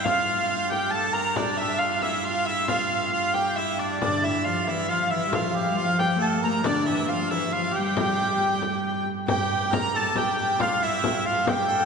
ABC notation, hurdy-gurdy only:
X:1
M:3/4
L:1/8
Q:1/4=137
K:Gdor
V:1 name="Hurdy-gurdy"
f3 g a b | d e f e f e | f3 g e d | d e f e f e |
f2 f g a b | d e f e f g- | g4- g z | g2 b a g2 |
f e2 f g2 |]